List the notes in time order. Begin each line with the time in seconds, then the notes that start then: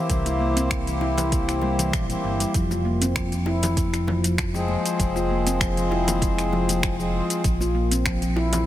Already playing: A#3 C4 E4 G4 C5
0.10 C2, kick, closed hi-hat, high bongo, shaker
0.26 E4, closed hi-hat, high conga, shaker
0.40 A#3
0.56 C4, closed hi-hat, high conga, shaker
0.71 finger snap, kick, closed hi-hat, shaker
0.87 E3, closed hi-hat, shaker
1.01 E4, high bongo
1.18 closed hi-hat, high conga, low conga, shaker
1.32 kick, closed hi-hat, shaker
1.49 finger snap, closed hi-hat, shaker
1.62 G3, high bongo, high conga
1.79 E3, closed hi-hat, high bongo, high conga, shaker
1.93 A#1, finger snap, kick, closed hi-hat, shaker
2.09 E3 A#3 C4 E4 G4 C5, closed hi-hat, shaker
2.24 G1 E4
2.40 G3, closed hi-hat, shaker
2.54 F1 F3, kick, closed hi-hat, shaker
2.71 F4, high conga, shaker
2.85 A#3
3.02 C4, closed hi-hat, high conga, shaker
3.16 F3, finger snap, kick, closed hi-hat, shaker
3.32 F3, closed hi-hat, shaker
3.46 E4, high bongo
3.63 closed hi-hat, high conga, low conga, shaker
3.77 kick, closed hi-hat, shaker
3.93 finger snap, closed hi-hat, high bongo, shaker
4.07 F3, high conga, low conga
4.24 F3, closed hi-hat, shaker
4.38 finger snap, kick, closed hi-hat, shaker
4.53 F3 G#3 C4 G#4 C5, high bongo, shaker
4.68 high conga
4.86 closed hi-hat, shaker
4.99 F1 F3, kick, closed hi-hat, shaker
5.16 F4, high conga, shaker
5.30 A#3
5.47 C4, closed hi-hat, high conga, shaker
5.61 F3, finger snap, kick, closed hi-hat, shaker
5.77 F3, closed hi-hat, shaker
5.91 E4, high bongo
6.08 closed hi-hat, high conga, low conga, shaker
6.22 kick, closed hi-hat, shaker
6.39 finger snap, closed hi-hat, shaker
6.53 F3, high bongo, high conga
6.69 F3, closed hi-hat, high bongo, high conga, shaker
6.83 finger snap, kick, closed hi-hat, shaker
6.99 F3 G#3 C4 F4 G#4 C5, shaker
7.30 closed hi-hat, shaker
7.44 A#1 F3, kick, closed hi-hat, shaker
7.61 F4, high conga, shaker
7.75 A#3
7.91 C4, closed hi-hat, high conga, shaker
8.06 F3, finger snap, kick, closed hi-hat, shaker
8.22 F3, closed hi-hat, shaker
8.36 E4, high bongo
8.53 closed hi-hat, high conga, low conga, shaker